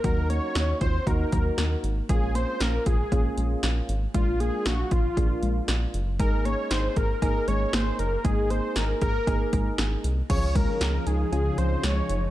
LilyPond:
<<
  \new Staff \with { instrumentName = "Analog synth lead" } { \time 4/4 \key bes \minor \tempo 4 = 117 bes'8 des''4 c''8 bes'4. r8 | aes'8 c''8 bes'8 aes'4. r4 | f'8 aes'8 ges'8 f'4. r4 | bes'8 des''8 c''8 bes'8 bes'8 des''8 c''8 bes'8 |
aes'8 c''8 bes'8 bes'4. r4 | des''8 bes'4 aes'8 aes'8 c''8 des''8. r16 | }
  \new Staff \with { instrumentName = "Synth keys" } { \time 4/4 \key bes \minor <bes ees' ges'>4. r8 <bes ees' ges'>4. r8 | <bes des' f'>4. r8 <bes des' f'>4. r8 | <bes d' f'>4. r8 <bes d' f'>4. r8 | <bes ees' aes'>4. r8 <bes ees' aes'>4. r8 |
<bes ees' aes'>4. r8 <bes ees' aes'>4. r8 | <des' f' aes'>4. r8 <des' f' aes'>4. r8 | }
  \new Staff \with { instrumentName = "Synth arpeggio sound" } { \time 4/4 \key bes \minor ges8 bes8 ees'8 f'8 ges'8 ges8 bes8 r8 | aes8 bes8 des'8 f'8 aes'8 aes8 bes8 r8 | aes8 bes8 d'8 f'8 aes'8 aes8 bes8 r8 | aes8 bes8 ees'8 aes'8 aes''8 aes8 bes8 r8 |
aes8 bes8 ees'8 aes'8 aes''8 aes8 bes8 r8 | f8 aes8 des'8 ees'8 f'8 f8 aes8 r8 | }
  \new Staff \with { instrumentName = "String machine" } { \clef bass \time 4/4 \key bes \minor r1 | r1 | r1 | r1 |
r1 | <des f ees'>1 | }
  \new Staff \with { instrumentName = "Analog synth bass" } { \clef bass \time 4/4 \key bes \minor ees,4 ees,8 ees,8 ees,8 ees,8 ees,8 aes,,8 | bes,,4 bes,,8 bes,,8 bes,,8 bes,,8 bes,,8 aes,,8 | bes,,4 bes,,8 bes,,8 bes,,8 bes,,8 bes,,8 ges,,8 | aes,,4 aes,,8 aes,,8 aes,,8 aes,,8 aes,,8 ges,,8 |
aes,,4 aes,,8 aes,,8 aes,,8 aes,,8 aes,,8 c,8 | des,4 des,8 des,8 des,8 des,8 des,8 ges,,8 | }
  \new DrumStaff \with { instrumentName = "Drums" } \drummode { \time 4/4 <hh bd>8 hh8 <hh sn>8 <hh bd>8 <hh bd>8 <hh bd>8 <hh sn>8 hh8 | <hh bd>8 hh8 <hh sn>8 <hh bd>8 <hh bd>8 hh8 <hh sn>8 hh8 | <hh bd>8 hh8 <hh sn>8 <hh bd>8 <hh bd>8 hh8 <hh sn>8 hh8 | <hh bd>8 hh8 <hh sn>8 <hh bd>8 <hh bd>8 hh8 <hh sn>8 hh8 |
<hh bd>8 hh8 <hh sn>8 <hh bd>8 <hh bd>8 <hh bd>8 <hh sn>8 hh8 | <cymc hh bd>8 <hh bd>8 <hh sn>8 hh8 hh8 hh8 <hh sn>8 hh8 | }
>>